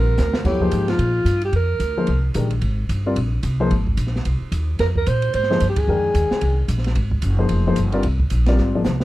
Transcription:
Already playing: upright bass A#1, grand piano D3 G3 C4 F4 A#4, alto saxophone A#4
0.18 upright bass D2, snare, hi-hat pedal
0.33 snare
0.45 upright bass F2, grand piano F#3 B3 E4 A4 C#5, alto saxophone G4, kick, snare, crash
0.61 grand piano F3 A#3 D#4 G#4 C5, kick
0.71 upright bass G#2, hi-hat pedal, ride
0.88 alto saxophone F4, snare, ride
0.98 upright bass A#2, ride
1.25 upright bass G2, hi-hat pedal, ride
1.41 alto saxophone G4, ride
1.52 upright bass F2, alto saxophone A#4, ride
1.80 upright bass D2, hi-hat pedal, ride
1.97 grand piano F3 A#3 D#4 G#4 C5
2.07 upright bass C2, ride
2.34 upright bass A#1, grand piano D#3 G#3 D4 G4 A#4, hi-hat pedal, ride
2.50 ride
2.62 upright bass G#1, ride
2.89 upright bass G1, hi-hat pedal, ride
3.06 grand piano G3 C4 F4 A#4 D5
3.16 upright bass A#1, ride
3.43 upright bass C2, hi-hat pedal, ride
3.60 grand piano F3 A#3 D#4 G#4 C5
3.71 upright bass G#1, ride
3.87 kick
3.97 upright bass A#1, hi-hat pedal, ride
4.07 snare
4.16 snare
4.25 upright bass C2, ride
4.41 muted upright bass stroke
4.52 upright bass D#2, hi-hat pedal, ride
4.79 upright bass F2, alto saxophone A#4, snare, ride
4.95 alto saxophone A#4, kick
5.06 upright bass A#2, alto saxophone C5, hi-hat pedal, ride
5.22 ride
5.34 upright bass G#2, alto saxophone C5, ride
5.43 snare
5.50 grand piano F3 A#3 D#4 G#4 C5, snare
5.60 upright bass G2, hi-hat pedal, ride
5.69 alto saxophone G4
5.76 alto saxophone G#4, kick, ride
5.88 upright bass F2, grand piano D#3 G#3 D4 A#4 G5
6.14 upright bass D#2, hi-hat pedal, ride
6.31 muted upright bass stroke, snare
6.41 upright bass C2, ride
6.68 upright bass A#1, hi-hat pedal, ride
6.78 snare
6.84 snare, ride
6.95 upright bass G#1, ride
7.11 kick
7.22 upright bass F#1, hi-hat pedal, ride
7.38 grand piano F3 A#3 D#4 G#4 C5
7.49 upright bass F1, ride
7.67 grand piano F3 A#3 D#4 G#4 C5
7.76 upright bass G1, hi-hat pedal, ride
7.92 grand piano G3 C4 F4 A#4 D5, ride
8.03 upright bass C2, ride
8.20 kick
8.30 upright bass A#1, hi-hat pedal, ride
8.46 grand piano G3 C4 F4 A#4 D5, snare, ride
8.58 upright bass G#1, snare
8.75 grand piano F3 A#3 D#4 G#4 D5
8.84 upright bass C2, snare, hi-hat pedal
9.00 snare

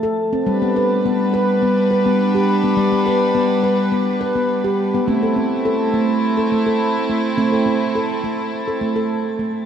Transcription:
Already playing: handpan F3
0.03 handpan A4
0.33 handpan C4
0.46 string section G3 D4 B4, handpan G3
0.62 handpan B3
0.76 handpan B4
1.06 handpan B3
1.34 handpan B4
1.62 handpan B3
1.91 handpan B4
2.06 handpan B3
2.35 handpan G4
2.64 handpan B3
2.77 handpan G3
2.92 handpan B3
3.06 handpan B4
3.35 handpan B3
3.64 handpan B4
3.92 handpan B3
4.21 handpan B4
4.35 handpan B3
4.64 handpan G4
4.94 handpan B3
5.07 string section A3 C4 E4, handpan A3 C4
5.23 handpan A4
5.36 handpan C4
5.65 handpan A4
5.94 handpan A3
6.37 handpan A4
6.52 handpan A3
6.66 handpan A4
7.09 handpan A3
7.38 handpan A3 C4
7.52 handpan A4
7.66 handpan C4
7.96 handpan A4
8.24 handpan A3
8.68 handpan A4
8.81 handpan A3
8.96 handpan A4
9.39 handpan A3

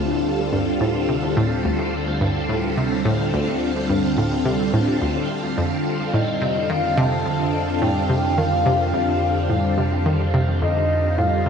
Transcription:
Already playing: synth arpeggio sound D2, analog synth bass D2, string machine D3 G3 C4 F4 A4, synth texture F5
0.53 synth arpeggio sound G2
0.81 synth arpeggio sound A2
1.09 synth arpeggio sound C3
1.37 synth arpeggio sound A2
1.65 synth arpeggio sound D2
2.21 synth arpeggio sound G2
2.49 synth arpeggio sound A2
2.77 synth arpeggio sound C3
3.05 synth arpeggio sound A2
3.33 synth arpeggio sound D2
3.90 synth arpeggio sound G2
4.18 synth arpeggio sound A2
4.46 synth arpeggio sound C3
4.74 synth arpeggio sound A2
5.01 synth arpeggio sound D2
5.58 analog synth bass F2, synth arpeggio sound F2
6.07 soft synth lead F5
6.14 synth arpeggio sound A2, soft synth lead D#5
6.42 synth arpeggio sound C3
6.70 synth arpeggio sound D#3, soft synth lead F5
6.98 synth arpeggio sound C3, soft synth lead A5
7.26 synth arpeggio sound F2
7.82 synth arpeggio sound A2, soft synth lead G5
8.10 synth arpeggio sound C3
8.38 synth arpeggio sound D#3, soft synth lead F5
8.66 synth arpeggio sound C3
8.94 synth arpeggio sound F2, soft synth lead F5
9.50 synth arpeggio sound A2
9.78 synth arpeggio sound C3
10.06 synth arpeggio sound D#3
10.34 synth arpeggio sound C3
10.62 synth arpeggio sound F2, soft synth lead D#5
11.18 synth arpeggio sound A2, soft synth lead F5
11.46 synth arpeggio sound C3

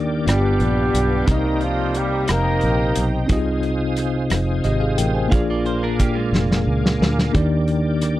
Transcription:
Already playing: fingered electric bass D#2, tine electric piano D#3 A#3 D4 D#4 G4 D5, tonewheel organ A#4 D5 G5 D6
0.25 fingered electric bass G1, tine electric piano G2 B3 D4 F4 G4 D5, horn section G3 B3 D4 G4, tonewheel organ B4 F5, cross-stick, closed hi-hat
0.60 fingered electric bass A#1, closed hi-hat
0.94 fingered electric bass B1, closed hi-hat
1.25 fingered electric bass C2, tine electric piano C3 C4 D#4 G4, horn section D#3 G3 A#3 D#4, tonewheel organ C5 A#5 D#6, kick, closed hi-hat
1.30 tine electric piano A#4 D#5
1.61 horn section F3 F4, closed hi-hat
1.95 horn section G3 G4, closed hi-hat
2.28 fingered electric bass F1, horn section A#3 D#4 G4 A#4, cross-stick, closed hi-hat
2.61 fingered electric bass A#1, closed hi-hat
2.95 fingered electric bass B1, closed hi-hat
3.26 fingered electric bass C2, tine electric piano C3 C4 D#4 F4, kick, closed hi-hat
3.31 tine electric piano G4 D#5, tonewheel organ C5 F5 G#5
3.37 tine electric piano G#4
3.63 closed hi-hat
3.96 cross-stick, closed hi-hat
4.30 fingered electric bass F1, cross-stick, closed hi-hat
4.64 fingered electric bass G#1, tine electric piano G4 D#5, closed hi-hat
4.80 tine electric piano G#4 F5
4.98 fingered electric bass A1, tine electric piano A#4 G5, closed hi-hat
5.15 tine electric piano C5 G#5
5.28 tine electric piano A#2 A#3 D4 F4, clean electric guitar G#4 F5, kick, closed hi-hat
5.33 fingered electric bass A#1, tine electric piano G#4 D5, tonewheel organ A#4 D6
5.50 clean electric guitar F4 D5
5.66 clean electric guitar C5, closed hi-hat
5.83 clean electric guitar D4 A#4
5.99 clean electric guitar A#3 G4, kick, closed hi-hat
6.15 clean electric guitar G#3 F4
6.32 fingered electric bass F1, snare
6.51 snare
6.67 fingered electric bass C#2
6.86 snare
7.01 fingered electric bass D2, snare
7.19 snare
7.32 fingered electric bass D#2, tine electric piano D#3 A#3 D4 D#4 G4 D5, kick, closed hi-hat
7.37 tonewheel organ D5 G5
7.68 closed hi-hat
8.01 cross-stick, closed hi-hat

